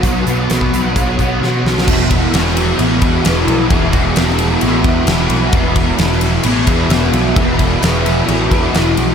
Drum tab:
CC |----------------|x---------------|----------------|----------------|
RD |----------------|--x-x-x-x-x-x-x-|x-x-x-x-x-x-x-x-|x-x-x-x-x-x-x-x-|
HH |x-x-x-x-x-x-----|----------------|----------------|----------------|
SD |----o-------o-oo|----oo------o---|----oo------o---|----oo------o---|
BD |o----o--o-o-----|o-o-------o-----|o-o-------o-----|o-o-------o-----|

CC |----------------|
RD |x-x-x-x-x-x-x-x-|
HH |----------------|
SD |----o-------o---|
BD |o-o-------o-----|